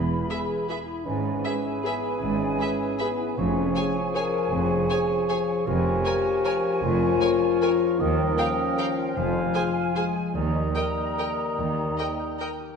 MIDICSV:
0, 0, Header, 1, 12, 480
1, 0, Start_track
1, 0, Tempo, 385604
1, 1323, Time_signature, 3, 2, 24, 8
1, 11882, Tempo, 407056
1, 15676, End_track
2, 0, Start_track
2, 0, Title_t, "Flute section"
2, 0, Program_c, 0, 73
2, 0, Note_on_c, 0, 83, 52
2, 1268, Note_off_c, 0, 83, 0
2, 1321, Note_on_c, 0, 80, 56
2, 4186, Note_off_c, 0, 80, 0
2, 4201, Note_on_c, 0, 80, 64
2, 7007, Note_off_c, 0, 80, 0
2, 7052, Note_on_c, 0, 80, 69
2, 9611, Note_off_c, 0, 80, 0
2, 9954, Note_on_c, 0, 79, 69
2, 11374, Note_off_c, 0, 79, 0
2, 11415, Note_on_c, 0, 80, 64
2, 12829, Note_on_c, 0, 82, 61
2, 12832, Note_off_c, 0, 80, 0
2, 15446, Note_off_c, 0, 82, 0
2, 15676, End_track
3, 0, Start_track
3, 0, Title_t, "Violin section"
3, 0, Program_c, 1, 48
3, 369, Note_on_c, 1, 76, 53
3, 468, Note_off_c, 1, 76, 0
3, 864, Note_on_c, 1, 76, 44
3, 964, Note_off_c, 1, 76, 0
3, 1804, Note_on_c, 1, 76, 52
3, 1904, Note_off_c, 1, 76, 0
3, 2314, Note_on_c, 1, 76, 50
3, 2413, Note_off_c, 1, 76, 0
3, 3247, Note_on_c, 1, 76, 54
3, 3346, Note_off_c, 1, 76, 0
3, 3725, Note_on_c, 1, 76, 53
3, 3824, Note_off_c, 1, 76, 0
3, 4678, Note_on_c, 1, 80, 59
3, 4777, Note_off_c, 1, 80, 0
3, 5173, Note_on_c, 1, 80, 52
3, 5273, Note_off_c, 1, 80, 0
3, 6097, Note_on_c, 1, 80, 63
3, 6197, Note_off_c, 1, 80, 0
3, 6586, Note_on_c, 1, 80, 55
3, 6686, Note_off_c, 1, 80, 0
3, 7536, Note_on_c, 1, 80, 65
3, 7636, Note_off_c, 1, 80, 0
3, 8025, Note_on_c, 1, 80, 56
3, 8125, Note_off_c, 1, 80, 0
3, 8975, Note_on_c, 1, 80, 64
3, 9075, Note_off_c, 1, 80, 0
3, 9480, Note_on_c, 1, 80, 58
3, 9580, Note_off_c, 1, 80, 0
3, 10432, Note_on_c, 1, 79, 62
3, 10531, Note_off_c, 1, 79, 0
3, 10931, Note_on_c, 1, 79, 59
3, 11030, Note_off_c, 1, 79, 0
3, 11879, Note_on_c, 1, 80, 58
3, 11973, Note_off_c, 1, 80, 0
3, 12367, Note_on_c, 1, 80, 49
3, 12462, Note_off_c, 1, 80, 0
3, 13301, Note_on_c, 1, 79, 54
3, 13395, Note_off_c, 1, 79, 0
3, 13815, Note_on_c, 1, 79, 48
3, 13909, Note_off_c, 1, 79, 0
3, 14760, Note_on_c, 1, 79, 51
3, 14855, Note_off_c, 1, 79, 0
3, 15258, Note_on_c, 1, 79, 47
3, 15352, Note_off_c, 1, 79, 0
3, 15676, End_track
4, 0, Start_track
4, 0, Title_t, "Cor anglais"
4, 0, Program_c, 2, 69
4, 0, Note_on_c, 2, 71, 48
4, 948, Note_off_c, 2, 71, 0
4, 1328, Note_on_c, 2, 71, 53
4, 4154, Note_off_c, 2, 71, 0
4, 4207, Note_on_c, 2, 73, 60
4, 7011, Note_off_c, 2, 73, 0
4, 7059, Note_on_c, 2, 73, 66
4, 9959, Note_on_c, 2, 75, 64
4, 9978, Note_off_c, 2, 73, 0
4, 11200, Note_off_c, 2, 75, 0
4, 11412, Note_on_c, 2, 77, 61
4, 12482, Note_off_c, 2, 77, 0
4, 12837, Note_on_c, 2, 75, 59
4, 15450, Note_off_c, 2, 75, 0
4, 15676, End_track
5, 0, Start_track
5, 0, Title_t, "Violin section"
5, 0, Program_c, 3, 48
5, 367, Note_on_c, 3, 71, 48
5, 467, Note_off_c, 3, 71, 0
5, 858, Note_on_c, 3, 71, 49
5, 957, Note_off_c, 3, 71, 0
5, 1809, Note_on_c, 3, 71, 47
5, 1909, Note_off_c, 3, 71, 0
5, 2305, Note_on_c, 3, 71, 47
5, 2404, Note_off_c, 3, 71, 0
5, 3239, Note_on_c, 3, 71, 53
5, 3339, Note_off_c, 3, 71, 0
5, 3728, Note_on_c, 3, 71, 53
5, 3827, Note_off_c, 3, 71, 0
5, 4672, Note_on_c, 3, 73, 54
5, 4771, Note_off_c, 3, 73, 0
5, 5168, Note_on_c, 3, 73, 59
5, 5268, Note_off_c, 3, 73, 0
5, 6090, Note_on_c, 3, 73, 59
5, 6190, Note_off_c, 3, 73, 0
5, 6592, Note_on_c, 3, 73, 59
5, 6691, Note_off_c, 3, 73, 0
5, 7529, Note_on_c, 3, 73, 60
5, 7629, Note_off_c, 3, 73, 0
5, 8031, Note_on_c, 3, 73, 60
5, 8131, Note_off_c, 3, 73, 0
5, 8975, Note_on_c, 3, 73, 61
5, 9074, Note_off_c, 3, 73, 0
5, 9488, Note_on_c, 3, 73, 61
5, 9588, Note_off_c, 3, 73, 0
5, 10437, Note_on_c, 3, 77, 59
5, 10537, Note_off_c, 3, 77, 0
5, 10935, Note_on_c, 3, 77, 58
5, 11035, Note_off_c, 3, 77, 0
5, 11878, Note_on_c, 3, 72, 58
5, 11973, Note_off_c, 3, 72, 0
5, 12359, Note_on_c, 3, 72, 51
5, 12453, Note_off_c, 3, 72, 0
5, 13311, Note_on_c, 3, 75, 51
5, 13406, Note_off_c, 3, 75, 0
5, 13811, Note_on_c, 3, 75, 51
5, 13905, Note_off_c, 3, 75, 0
5, 14752, Note_on_c, 3, 75, 50
5, 14847, Note_off_c, 3, 75, 0
5, 15245, Note_on_c, 3, 75, 51
5, 15340, Note_off_c, 3, 75, 0
5, 15676, End_track
6, 0, Start_track
6, 0, Title_t, "Clarinet"
6, 0, Program_c, 4, 71
6, 0, Note_on_c, 4, 68, 53
6, 997, Note_off_c, 4, 68, 0
6, 1325, Note_on_c, 4, 68, 59
6, 4152, Note_off_c, 4, 68, 0
6, 4202, Note_on_c, 4, 68, 65
6, 7052, Note_on_c, 4, 70, 72
6, 7071, Note_off_c, 4, 68, 0
6, 9938, Note_off_c, 4, 70, 0
6, 9946, Note_on_c, 4, 70, 66
6, 11406, Note_on_c, 4, 72, 58
6, 11425, Note_off_c, 4, 70, 0
6, 12501, Note_off_c, 4, 72, 0
6, 12823, Note_on_c, 4, 70, 59
6, 15443, Note_off_c, 4, 70, 0
6, 15676, End_track
7, 0, Start_track
7, 0, Title_t, "Harp"
7, 0, Program_c, 5, 46
7, 0, Note_on_c, 5, 40, 54
7, 0, Note_on_c, 5, 68, 41
7, 0, Note_on_c, 5, 71, 44
7, 0, Note_on_c, 5, 80, 41
7, 123, Note_on_c, 5, 59, 40
7, 347, Note_off_c, 5, 71, 0
7, 361, Note_on_c, 5, 71, 44
7, 596, Note_off_c, 5, 80, 0
7, 611, Note_on_c, 5, 80, 44
7, 844, Note_off_c, 5, 71, 0
7, 859, Note_on_c, 5, 71, 44
7, 1081, Note_off_c, 5, 68, 0
7, 1096, Note_on_c, 5, 68, 46
7, 1326, Note_on_c, 5, 44, 53
7, 1340, Note_off_c, 5, 40, 0
7, 1541, Note_off_c, 5, 59, 0
7, 1556, Note_on_c, 5, 59, 43
7, 1783, Note_off_c, 5, 71, 0
7, 1798, Note_on_c, 5, 71, 48
7, 2049, Note_on_c, 5, 76, 47
7, 2283, Note_off_c, 5, 71, 0
7, 2298, Note_on_c, 5, 71, 51
7, 2537, Note_on_c, 5, 64, 48
7, 2747, Note_off_c, 5, 44, 0
7, 2761, Note_on_c, 5, 44, 54
7, 2981, Note_off_c, 5, 59, 0
7, 2996, Note_on_c, 5, 59, 42
7, 3224, Note_off_c, 5, 71, 0
7, 3239, Note_on_c, 5, 71, 51
7, 3470, Note_off_c, 5, 76, 0
7, 3485, Note_on_c, 5, 76, 50
7, 3718, Note_off_c, 5, 71, 0
7, 3733, Note_on_c, 5, 71, 53
7, 3958, Note_off_c, 5, 64, 0
7, 3973, Note_on_c, 5, 64, 48
7, 4205, Note_on_c, 5, 53, 57
7, 4217, Note_off_c, 5, 44, 0
7, 4218, Note_off_c, 5, 76, 0
7, 4219, Note_off_c, 5, 59, 0
7, 4219, Note_off_c, 5, 64, 0
7, 4219, Note_off_c, 5, 71, 0
7, 4435, Note_on_c, 5, 61, 50
7, 4663, Note_off_c, 5, 68, 0
7, 4678, Note_on_c, 5, 68, 48
7, 4928, Note_on_c, 5, 85, 52
7, 5153, Note_off_c, 5, 68, 0
7, 5168, Note_on_c, 5, 68, 54
7, 5399, Note_on_c, 5, 73, 53
7, 5466, Note_off_c, 5, 80, 0
7, 5608, Note_off_c, 5, 53, 0
7, 5623, Note_on_c, 5, 53, 60
7, 5836, Note_off_c, 5, 61, 0
7, 5851, Note_on_c, 5, 61, 49
7, 6081, Note_off_c, 5, 68, 0
7, 6096, Note_on_c, 5, 68, 56
7, 6330, Note_off_c, 5, 85, 0
7, 6345, Note_on_c, 5, 85, 55
7, 6574, Note_off_c, 5, 68, 0
7, 6589, Note_on_c, 5, 68, 56
7, 6814, Note_off_c, 5, 73, 0
7, 6828, Note_on_c, 5, 73, 55
7, 7042, Note_off_c, 5, 53, 0
7, 7057, Note_on_c, 5, 53, 70
7, 7271, Note_off_c, 5, 61, 0
7, 7286, Note_on_c, 5, 61, 53
7, 7522, Note_off_c, 5, 68, 0
7, 7537, Note_on_c, 5, 68, 58
7, 7784, Note_on_c, 5, 82, 59
7, 8017, Note_off_c, 5, 68, 0
7, 8032, Note_on_c, 5, 68, 61
7, 8268, Note_on_c, 5, 70, 51
7, 8479, Note_off_c, 5, 53, 0
7, 8494, Note_on_c, 5, 53, 69
7, 8711, Note_off_c, 5, 61, 0
7, 8726, Note_on_c, 5, 61, 55
7, 8961, Note_off_c, 5, 68, 0
7, 8976, Note_on_c, 5, 68, 59
7, 9218, Note_off_c, 5, 82, 0
7, 9233, Note_on_c, 5, 82, 53
7, 9469, Note_off_c, 5, 68, 0
7, 9484, Note_on_c, 5, 68, 59
7, 9711, Note_off_c, 5, 70, 0
7, 9726, Note_on_c, 5, 70, 54
7, 9956, Note_on_c, 5, 51, 63
7, 9977, Note_off_c, 5, 68, 0
7, 10188, Note_on_c, 5, 55, 50
7, 10417, Note_off_c, 5, 70, 0
7, 10432, Note_on_c, 5, 70, 56
7, 10683, Note_on_c, 5, 77, 59
7, 10919, Note_off_c, 5, 70, 0
7, 10934, Note_on_c, 5, 70, 54
7, 11176, Note_on_c, 5, 65, 48
7, 11200, Note_off_c, 5, 85, 0
7, 11393, Note_off_c, 5, 53, 0
7, 11407, Note_on_c, 5, 53, 67
7, 11422, Note_off_c, 5, 51, 0
7, 11422, Note_off_c, 5, 55, 0
7, 11422, Note_off_c, 5, 61, 0
7, 11423, Note_off_c, 5, 70, 0
7, 11424, Note_off_c, 5, 73, 0
7, 11424, Note_off_c, 5, 82, 0
7, 11623, Note_off_c, 5, 65, 0
7, 11638, Note_on_c, 5, 65, 51
7, 11885, Note_on_c, 5, 72, 52
7, 12125, Note_on_c, 5, 80, 52
7, 12351, Note_off_c, 5, 72, 0
7, 12366, Note_on_c, 5, 72, 50
7, 12604, Note_on_c, 5, 68, 45
7, 12830, Note_on_c, 5, 51, 61
7, 12844, Note_off_c, 5, 77, 0
7, 12846, Note_off_c, 5, 53, 0
7, 12846, Note_off_c, 5, 65, 0
7, 12847, Note_off_c, 5, 72, 0
7, 12847, Note_off_c, 5, 80, 0
7, 12848, Note_off_c, 5, 68, 0
7, 13065, Note_on_c, 5, 63, 44
7, 13311, Note_on_c, 5, 70, 47
7, 13564, Note_on_c, 5, 79, 49
7, 13797, Note_off_c, 5, 70, 0
7, 13811, Note_on_c, 5, 70, 49
7, 14052, Note_on_c, 5, 67, 45
7, 14267, Note_off_c, 5, 51, 0
7, 14281, Note_on_c, 5, 51, 61
7, 14499, Note_off_c, 5, 63, 0
7, 14513, Note_on_c, 5, 63, 43
7, 14744, Note_off_c, 5, 70, 0
7, 14758, Note_on_c, 5, 70, 51
7, 14992, Note_off_c, 5, 79, 0
7, 15007, Note_on_c, 5, 79, 47
7, 15234, Note_off_c, 5, 70, 0
7, 15248, Note_on_c, 5, 70, 49
7, 15474, Note_off_c, 5, 67, 0
7, 15488, Note_on_c, 5, 67, 46
7, 15676, Note_off_c, 5, 51, 0
7, 15676, Note_off_c, 5, 63, 0
7, 15676, Note_off_c, 5, 67, 0
7, 15676, Note_off_c, 5, 70, 0
7, 15676, Note_off_c, 5, 79, 0
7, 15676, End_track
8, 0, Start_track
8, 0, Title_t, "Viola section"
8, 0, Program_c, 6, 48
8, 371, Note_on_c, 6, 68, 48
8, 470, Note_off_c, 6, 68, 0
8, 861, Note_on_c, 6, 68, 50
8, 961, Note_off_c, 6, 68, 0
8, 1801, Note_on_c, 6, 68, 52
8, 1900, Note_off_c, 6, 68, 0
8, 2299, Note_on_c, 6, 68, 54
8, 2398, Note_off_c, 6, 68, 0
8, 3242, Note_on_c, 6, 68, 49
8, 3341, Note_off_c, 6, 68, 0
8, 3739, Note_on_c, 6, 68, 56
8, 3838, Note_off_c, 6, 68, 0
8, 4676, Note_on_c, 6, 68, 54
8, 4775, Note_off_c, 6, 68, 0
8, 5164, Note_on_c, 6, 68, 57
8, 5263, Note_off_c, 6, 68, 0
8, 6096, Note_on_c, 6, 68, 58
8, 6195, Note_off_c, 6, 68, 0
8, 6598, Note_on_c, 6, 68, 62
8, 6697, Note_off_c, 6, 68, 0
8, 7539, Note_on_c, 6, 70, 59
8, 7638, Note_off_c, 6, 70, 0
8, 8022, Note_on_c, 6, 70, 66
8, 8122, Note_off_c, 6, 70, 0
8, 8972, Note_on_c, 6, 70, 61
8, 9071, Note_off_c, 6, 70, 0
8, 9476, Note_on_c, 6, 70, 64
8, 9576, Note_off_c, 6, 70, 0
8, 10431, Note_on_c, 6, 70, 60
8, 10531, Note_off_c, 6, 70, 0
8, 10931, Note_on_c, 6, 70, 62
8, 11030, Note_off_c, 6, 70, 0
8, 11886, Note_on_c, 6, 68, 55
8, 11980, Note_off_c, 6, 68, 0
8, 12362, Note_on_c, 6, 68, 59
8, 12456, Note_off_c, 6, 68, 0
8, 13302, Note_on_c, 6, 70, 50
8, 13396, Note_off_c, 6, 70, 0
8, 13813, Note_on_c, 6, 70, 47
8, 13907, Note_off_c, 6, 70, 0
8, 14757, Note_on_c, 6, 70, 51
8, 14851, Note_off_c, 6, 70, 0
8, 15246, Note_on_c, 6, 70, 50
8, 15340, Note_off_c, 6, 70, 0
8, 15676, End_track
9, 0, Start_track
9, 0, Title_t, "French horn section"
9, 0, Program_c, 7, 60
9, 0, Note_on_c, 7, 64, 69
9, 353, Note_on_c, 7, 68, 78
9, 363, Note_off_c, 7, 64, 0
9, 853, Note_off_c, 7, 68, 0
9, 854, Note_on_c, 7, 64, 71
9, 1311, Note_on_c, 7, 61, 87
9, 1321, Note_off_c, 7, 64, 0
9, 2290, Note_on_c, 7, 59, 69
9, 2292, Note_off_c, 7, 61, 0
9, 2754, Note_on_c, 7, 61, 77
9, 2761, Note_off_c, 7, 59, 0
9, 3726, Note_off_c, 7, 61, 0
9, 3732, Note_on_c, 7, 59, 76
9, 4200, Note_on_c, 7, 61, 93
9, 4201, Note_off_c, 7, 59, 0
9, 4940, Note_off_c, 7, 61, 0
9, 5151, Note_on_c, 7, 70, 96
9, 5606, Note_off_c, 7, 70, 0
9, 5618, Note_on_c, 7, 68, 82
9, 7044, Note_on_c, 7, 67, 102
9, 7056, Note_off_c, 7, 68, 0
9, 8464, Note_off_c, 7, 67, 0
9, 8490, Note_on_c, 7, 65, 106
9, 9955, Note_off_c, 7, 65, 0
9, 9959, Note_on_c, 7, 58, 89
9, 10437, Note_off_c, 7, 58, 0
9, 10440, Note_on_c, 7, 61, 95
9, 11408, Note_off_c, 7, 61, 0
9, 11410, Note_on_c, 7, 65, 84
9, 12346, Note_off_c, 7, 65, 0
9, 12358, Note_on_c, 7, 56, 76
9, 12816, Note_off_c, 7, 56, 0
9, 12819, Note_on_c, 7, 58, 75
9, 15441, Note_off_c, 7, 58, 0
9, 15676, End_track
10, 0, Start_track
10, 0, Title_t, "Bassoon"
10, 0, Program_c, 8, 70
10, 0, Note_on_c, 8, 52, 54
10, 996, Note_off_c, 8, 52, 0
10, 1321, Note_on_c, 8, 52, 60
10, 4150, Note_off_c, 8, 52, 0
10, 4204, Note_on_c, 8, 53, 64
10, 7009, Note_off_c, 8, 53, 0
10, 7054, Note_on_c, 8, 53, 69
10, 9908, Note_off_c, 8, 53, 0
10, 9951, Note_on_c, 8, 53, 72
10, 12450, Note_off_c, 8, 53, 0
10, 12829, Note_on_c, 8, 55, 63
10, 15446, Note_off_c, 8, 55, 0
10, 15676, End_track
11, 0, Start_track
11, 0, Title_t, "Cello section"
11, 0, Program_c, 10, 48
11, 0, Note_on_c, 10, 40, 60
11, 278, Note_off_c, 10, 40, 0
11, 1324, Note_on_c, 10, 44, 62
11, 1715, Note_off_c, 10, 44, 0
11, 2763, Note_on_c, 10, 44, 69
11, 3154, Note_off_c, 10, 44, 0
11, 4201, Note_on_c, 10, 41, 76
11, 4593, Note_off_c, 10, 41, 0
11, 5619, Note_on_c, 10, 41, 76
11, 6008, Note_off_c, 10, 41, 0
11, 7048, Note_on_c, 10, 41, 79
11, 7447, Note_off_c, 10, 41, 0
11, 8496, Note_on_c, 10, 41, 80
11, 8891, Note_off_c, 10, 41, 0
11, 9958, Note_on_c, 10, 39, 76
11, 10352, Note_off_c, 10, 39, 0
11, 11406, Note_on_c, 10, 41, 77
11, 11799, Note_off_c, 10, 41, 0
11, 12823, Note_on_c, 10, 39, 67
11, 13221, Note_off_c, 10, 39, 0
11, 14276, Note_on_c, 10, 39, 67
11, 14671, Note_off_c, 10, 39, 0
11, 15676, End_track
12, 0, Start_track
12, 0, Title_t, "Double bass section"
12, 0, Program_c, 11, 48
12, 0, Note_on_c, 11, 28, 59
12, 284, Note_off_c, 11, 28, 0
12, 1319, Note_on_c, 11, 32, 60
12, 1713, Note_off_c, 11, 32, 0
12, 2771, Note_on_c, 11, 32, 66
12, 3158, Note_off_c, 11, 32, 0
12, 4202, Note_on_c, 11, 29, 77
12, 4593, Note_off_c, 11, 29, 0
12, 5627, Note_on_c, 11, 29, 75
12, 6013, Note_off_c, 11, 29, 0
12, 7053, Note_on_c, 11, 29, 74
12, 7449, Note_off_c, 11, 29, 0
12, 8496, Note_on_c, 11, 29, 80
12, 8891, Note_off_c, 11, 29, 0
12, 9958, Note_on_c, 11, 39, 75
12, 10352, Note_off_c, 11, 39, 0
12, 11407, Note_on_c, 11, 29, 75
12, 11799, Note_off_c, 11, 29, 0
12, 12825, Note_on_c, 11, 39, 64
12, 13222, Note_off_c, 11, 39, 0
12, 14274, Note_on_c, 11, 39, 62
12, 14671, Note_off_c, 11, 39, 0
12, 15676, End_track
0, 0, End_of_file